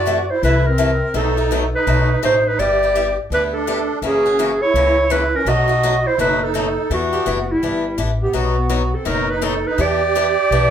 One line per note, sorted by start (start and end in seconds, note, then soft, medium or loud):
0.00 0.28 F#2 medium
0.00 0.26 F#4 medium
0.00 0.32 D5 medium
0.06 0.17 C3 medium
0.06 0.18 E3 medium
0.06 0.18 A3 medium
0.06 0.18 E4 medium
0.06 0.18 F#4 medium
0.30 0.42 E4 medium
0.30 0.43 C5 medium
0.43 1.00 C2 medium
0.43 0.64 C3 medium
0.43 0.65 E3 medium
0.43 0.65 A3 medium
0.43 0.64 E4 medium
0.43 0.65 E4 medium
0.43 0.65 F#4 medium
0.43 0.67 B4 medium
0.66 1.16 C4 medium
0.66 1.15 A#4 medium
0.78 0.90 C3 medium
0.78 0.90 E3 medium
0.78 0.90 A3 medium
0.78 0.90 E4 medium
0.78 0.90 F#4 medium
1.14 1.72 B1 medium
1.14 1.36 B2 medium
1.14 1.36 F#3 medium
1.14 1.36 A3 medium
1.14 1.36 D#4 medium
1.14 1.69 D#4 medium
1.14 1.36 F#4 medium
1.14 1.70 A4 medium
1.37 1.50 A3 soft
1.37 1.51 D#4 medium
1.37 1.50 F#4 medium
1.51 1.62 B2 medium
1.51 1.62 F#3 medium
1.51 1.62 A3 medium
1.51 1.63 D#4 medium
1.51 1.62 F#4 medium
1.74 2.20 D#4 medium
1.74 2.20 B4 medium
1.87 2.17 B1 medium
1.87 2.08 B2 medium
1.87 2.08 F#3 medium
1.87 2.08 A3 medium
1.87 2.08 D#4 medium
1.87 2.08 F#4 medium
2.23 2.53 A1 medium
2.23 2.34 B2 medium
2.23 2.34 F#3 medium
2.23 2.34 A3 medium
2.23 2.34 D#4 medium
2.23 2.44 D#4 medium
2.23 2.34 F#4 medium
2.23 2.49 C5 medium
2.47 2.59 D#4 medium
2.47 2.61 B4 medium
2.59 3.16 G1 medium
2.59 2.80 G3 medium
2.59 2.80 B3 medium
2.59 2.80 E4 medium
2.59 3.18 G4 medium
2.59 2.81 G4 medium
2.59 3.17 D5 loud
2.83 2.95 B3 soft
2.83 2.95 E4 soft
2.83 2.95 G4 soft
2.95 3.06 G3 medium
2.95 3.06 B3 medium
2.95 3.06 E4 medium
2.95 3.07 G4 medium
3.30 3.88 D2 medium
3.30 3.53 G3 medium
3.30 3.52 B3 medium
3.30 3.42 D4 medium
3.30 3.53 E4 medium
3.30 3.53 G4 medium
3.30 3.43 B4 medium
3.53 3.99 D4 medium
3.53 3.99 A4 medium
3.67 3.78 G3 medium
3.67 3.78 B3 medium
3.67 3.78 E4 medium
3.67 3.79 G4 medium
4.02 4.60 F#1 medium
4.02 4.24 C#3 medium
4.02 4.24 E3 medium
4.02 4.24 A#3 medium
4.02 4.24 C#4 medium
4.02 4.58 C#4 medium
4.02 4.24 F#4 medium
4.02 4.64 G#4 medium
4.26 4.38 A#3 soft
4.26 4.38 C#4 soft
4.26 4.38 F#4 medium
4.39 4.50 C#3 medium
4.39 4.50 E3 medium
4.39 4.50 A#3 medium
4.39 4.50 C#4 medium
4.39 4.50 F#4 medium
4.61 5.10 E4 medium
4.61 5.13 C#5 medium
4.74 5.32 C#2 medium
4.74 4.96 C#3 medium
4.74 4.96 E3 medium
4.74 4.96 A#3 medium
4.74 4.96 C#4 medium
4.74 4.96 F#4 medium
5.10 5.22 C#3 medium
5.10 5.22 E3 medium
5.10 5.22 A#3 medium
5.10 5.22 C#4 medium
5.10 5.34 E4 medium
5.10 5.22 F#4 medium
5.10 5.37 B4 medium
5.34 5.47 C#4 medium
5.34 5.50 A#4 medium
5.45 6.03 B1 medium
5.45 5.68 B2 medium
5.45 5.68 F#3 medium
5.45 5.68 A3 medium
5.45 5.68 D#4 medium
5.45 6.05 F#4 medium
5.45 5.67 F#4 medium
5.45 6.09 D#5 loud
5.68 5.82 A3 soft
5.68 5.82 D#4 medium
5.68 5.81 F#4 medium
5.83 5.94 B2 medium
5.83 5.94 F#3 medium
5.83 5.94 A3 medium
5.83 5.94 D#4 medium
5.83 5.95 F#4 medium
6.06 6.19 E4 medium
6.06 6.20 C5 medium
6.18 6.76 F#1 medium
6.18 6.40 B2 medium
6.18 6.40 F#3 medium
6.18 6.40 A3 medium
6.18 6.40 D#4 medium
6.18 6.41 D#4 medium
6.18 6.40 F#4 medium
6.18 6.45 B4 medium
6.42 6.91 D#4 medium
6.42 6.92 A4 medium
6.54 6.65 B2 medium
6.54 6.66 F#3 medium
6.54 6.66 A3 medium
6.54 6.66 D#4 medium
6.54 6.66 F#4 medium
6.90 7.19 E2 medium
6.90 7.12 E3 medium
6.90 7.12 B3 medium
6.90 7.46 B3 medium
6.90 7.12 D4 medium
6.90 7.53 F#4 medium
6.90 7.11 G4 medium
7.13 7.25 B3 soft
7.13 7.25 D4 medium
7.13 7.26 G4 medium
7.26 7.57 F#1 medium
7.26 7.37 E3 medium
7.26 7.38 B3 medium
7.26 7.37 D4 medium
7.26 7.38 G4 medium
7.52 8.00 G3 medium
7.52 8.00 E4 medium
7.63 7.93 G1 medium
7.63 7.84 E3 medium
7.63 7.84 B3 medium
7.63 7.84 D4 medium
7.63 7.84 G4 medium
7.98 8.29 A1 medium
7.98 8.09 E3 medium
7.98 8.09 B3 medium
7.98 8.10 D4 medium
7.98 8.10 G4 medium
8.21 8.33 B3 medium
8.21 8.37 G4 medium
8.33 8.92 B1 medium
8.33 8.55 B2 medium
8.33 8.55 F#3 medium
8.33 8.55 B3 medium
8.33 8.93 B3 medium
8.33 8.55 D#4 medium
8.33 8.56 F#4 medium
8.33 8.96 F#4 medium
8.69 8.81 B2 medium
8.69 8.81 F#3 medium
8.69 8.81 B3 medium
8.69 8.82 D#4 medium
8.69 8.81 F#4 medium
8.94 9.07 C4 medium
8.94 9.08 A4 medium
9.05 9.64 F#1 medium
9.05 9.27 B2 medium
9.05 9.27 F#3 medium
9.05 9.27 B3 medium
9.05 9.27 D#4 medium
9.05 9.29 D#4 medium
9.05 9.27 F#4 medium
9.05 9.31 A#4 medium
9.30 9.42 D#4 medium
9.30 9.45 B4 medium
9.42 9.53 B2 medium
9.42 9.53 F#3 medium
9.42 9.53 B3 medium
9.42 9.53 D#4 medium
9.42 9.65 D#4 medium
9.42 9.53 F#4 medium
9.42 9.69 A4 medium
9.67 9.79 D#4 medium
9.67 9.83 B4 medium
9.78 10.36 E2 medium
9.78 9.99 E3 medium
9.78 9.99 B3 medium
9.78 10.00 D4 medium
9.78 10.70 G4 medium
9.78 10.00 G4 medium
9.78 10.70 D5 loud
10.15 10.26 E3 medium
10.15 10.26 B3 medium
10.15 10.27 D4 medium
10.15 10.26 G4 medium
10.51 10.70 B1 medium
10.51 10.70 E3 medium
10.51 10.70 B3 medium
10.51 10.70 D4 medium
10.51 10.70 G4 medium